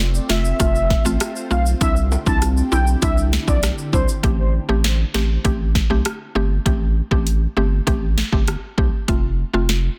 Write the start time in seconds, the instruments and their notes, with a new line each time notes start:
Already playing: sub bass F1, synth pluck A3 C4 F4, ambient pad A3 C4 F4
0.15 shaker
0.29 sub bass F1, synth pluck A3 C4 F4, soft synth lead E5, snare, shaker
0.45 shaker
0.60 sub bass F1, synth pluck A3 C4 F4, soft synth lead E5, kick, closed hi-hat, shaker
0.75 shaker
0.90 kick, snare
1.05 sub bass A1, synth pluck A3 C4 F4, shaker
1.20 cross-stick, closed hi-hat, shaker
1.36 shaker
1.51 sub bass B1, synth pluck A3 C4 F4, soft synth lead F5, shaker
1.66 shaker
1.81 sub bass C2, ambient pad D3 D4 E4 G4, synth pluck C4 D4 E4, soft synth lead E5, kick, closed hi-hat, shaker
1.96 shaker
2.12 high timbale, shaker
2.26 sub bass C2, synth pluck C4 D4 E4, soft synth lead A5, kick, shaker
2.42 cross-stick, closed hi-hat, shaker
2.57 shaker
2.72 sub bass B1, synth pluck C4 D4 E4, soft synth lead G5, shaker
2.87 shaker
3.02 sub bass C2, synth pluck C4 D4 E4, soft synth lead E5, kick, closed hi-hat, shaker
3.18 shaker
3.33 snare, shaker
3.48 sub bass B1, synth pluck C4 D4 E4, soft synth lead D5, kick, shaker
3.63 cross-stick, snare, closed hi-hat, shaker
3.78 shaker
3.93 sub bass C2, synth pluck C4 D4 E4, soft synth lead C5, kick, shaker
4.08 shaker
4.23 sub bass A1, synth pluck A3 C4 G4, kick, closed hi-hat
4.69 sub bass A1, synth pluck A3 C4 G4
4.84 snare, closed hi-hat
5.14 sub bass A1, synth pluck A3 C4 G4, snare
5.44 sub bass A1, synth pluck A3 C4 G4, kick, closed hi-hat
5.75 kick, snare
5.90 sub bass B1, synth pluck A3 C4 G4
6.05 cross-stick, closed hi-hat
6.35 sub bass G1, synth pluck A3 C4 G4
6.66 sub bass A1, synth pluck A3 C4 G4, kick, closed hi-hat
7.11 sub bass A1, synth pluck A3 C4 G4, kick
7.27 closed hi-hat
7.57 sub bass G1, synth pluck A3 C4 G4
7.87 sub bass A1, synth pluck A3 C4 G4, kick, closed hi-hat
8.18 snare
8.32 sub bass G1, synth pluck A3 C4 G4, kick
8.48 cross-stick, closed hi-hat
8.78 sub bass B1, synth pluck A3 C4 G4, kick
9.08 sub bass F1, synth pluck A3 C4 F4, kick, closed hi-hat
9.54 sub bass F1, synth pluck A3 C4 F4
9.69 snare, closed hi-hat